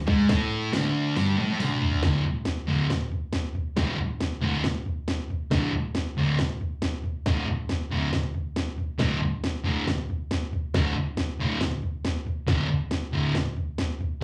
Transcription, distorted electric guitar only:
0.06 G#2 G#3
0.29 A2 A3
0.74 D2 D3
1.17 G2 G3
1.37 A2 A3
1.59 D2 D3
2.03 D2 A2 D3
2.67 D2 A2 D3
3.77 D2 A2 D3
4.42 D2 A2 D3
5.51 D2 A2 D3
6.18 D2 A2 D3
7.26 D2 A2 D3
7.91 D2 A2 D3
8.98 D2 A2 D3
9.64 D2 A2 D3
10.75 D2 A2 D3
11.40 D2 A2 D3
12.47 D2 A2 D3
13.13 D2 A2 D3

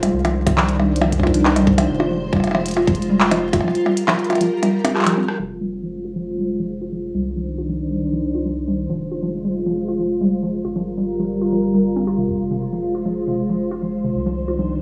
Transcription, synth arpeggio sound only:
0.03 G3
0.25 F3
0.47 F4
0.58 F3
0.80 G3
1.01 F3
1.23 F4
1.34 F3
1.56 G3
1.78 F3
2.00 F4
2.11 F3
2.33 G3
2.55 F3
2.77 F4
2.88 F3
3.10 G3
3.31 F3
3.53 F4
3.64 F3
3.86 G3
4.08 F3
4.30 F4
4.41 F3
4.63 G3
4.85 C4
5.06 F3
5.17 C4
5.39 F3
5.61 G3
5.83 F3
6.05 F4
6.16 F3
6.38 G3
6.60 F3
6.81 F4
6.92 F3
7.14 G3
7.36 F3
7.58 F4
7.69 F3
7.91 G3
8.13 F3
8.35 F4
8.46 F3
8.68 G3
8.90 F3
9.12 F4
9.23 F3
9.44 G3
9.66 F3
9.88 F4
9.99 F3
10.21 G3
10.43 F3
10.65 F4
10.76 F3
10.98 G3
11.19 F3
11.41 F4
11.52 F3
11.74 G3
11.96 C4
12.07 F4
12.18 C3
12.29 F2
12.51 C3
12.73 F3
12.95 F4
13.06 F3
13.28 C3
13.49 F3
13.71 F4
13.82 F3
14.04 C3
14.26 F3
14.48 F4
14.59 F3

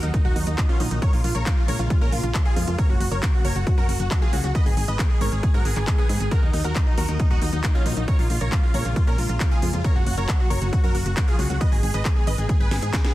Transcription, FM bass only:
0.03 D#2
0.25 D#1
0.36 D#2
0.47 D#2
0.80 A#1
0.91 A#1
1.13 A#1
1.24 A#1
1.35 A#1
1.68 A#1
1.79 A#1
2.01 A#2
2.12 A#1
2.23 A#1
2.56 F2
2.67 F2
2.89 F#1
3.00 F#1
3.11 F#1
3.45 F#1
3.56 F#1
3.78 F#2
3.89 F#1
4.00 F#1
4.33 C#2
4.44 C#2
4.66 G#1
4.77 G#1
4.88 G#1
5.21 G#1
5.32 G#1
5.54 G#2
5.65 G#1
5.76 G#1
6.09 G#2
6.20 G#1
6.43 D#2
6.54 D#2
6.65 D#2
6.98 D#2
7.09 D#2
7.31 D#1
7.42 D#2
7.53 D#2
7.86 A#1
7.97 A#1
8.19 A#1
8.30 A#1
8.41 A#1
8.74 A#1
8.85 A#1
9.07 A#2
9.18 A#1
9.29 A#1
9.62 F2
9.74 F2
9.96 F#1
10.07 F#1
10.18 F#1
10.51 F#1
10.62 F#1
10.84 F#2
10.95 F#1
11.06 F#1
11.39 C#2
11.50 C#2
11.72 G#1
11.83 G#1
11.94 G#1
12.27 G#1
12.38 G#1
12.60 G#1
12.71 G#1
12.82 G#2

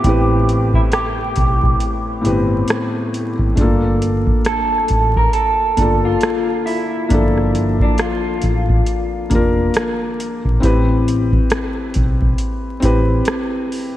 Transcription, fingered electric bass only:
0.05 A1
1.38 B1
2.26 G1
3.40 G#1
3.57 G1
4.91 A1
5.78 G1
7.11 G1
8.44 A1
9.31 F1
10.46 A#1
10.64 A1
11.96 B1
12.83 A1

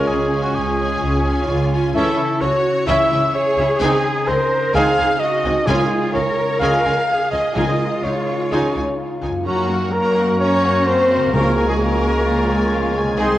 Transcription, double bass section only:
0.08 C#2
0.55 C#2
1.01 C#2
1.48 C#2
1.94 C#2
2.41 C#2
2.88 C#2
3.11 C#2
3.57 C#2
3.81 C#2
4.28 C#2
4.74 C#2
4.98 C#2
5.45 C#2
5.68 C#2
6.15 C#2
6.61 C#2
6.85 C#2
7.32 C#2
7.55 C#2
8.04 C#2
8.52 C#2
8.76 C#2
9.22 C#2
9.45 F#2
11.33 C#2
13.20 C2

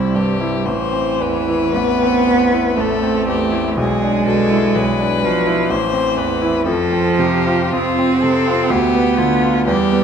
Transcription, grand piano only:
Already playing: C2 C4
0.15 G2
0.40 E4
0.66 A1
0.92 C4
1.20 E2
1.48 E4
1.75 A1
2.02 C4
2.27 E2
2.52 E4
2.77 A1
3.03 C4
3.27 E2
3.52 E4
3.77 B1
4.02 D4
4.27 B2
4.50 E4
4.75 B1
4.99 D4
5.23 B2
5.47 E4
5.70 A1
5.93 C4
6.17 E2
6.41 E4
6.66 F2
6.93 C4
7.19 C3
7.47 F4
7.73 F2
7.99 C4
8.24 C3
8.47 F4
8.70 D2
8.95 B3
9.18 D3
9.43 F4
9.67 E2
9.92 B3

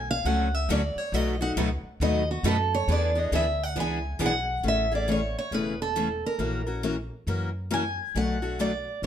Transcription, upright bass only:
Already playing: B1
0.25 C#2
0.69 D2
0.96 muted upright bass stroke
1.12 B1
1.56 C#2
1.83 muted upright bass stroke
2.00 D#2
2.43 F#2
2.88 E2
3.32 D2
3.76 C#2
4.20 B1
4.63 A1
5.51 E1
6.38 A#1
7.27 F#2
8.15 B1
9.02 F#1

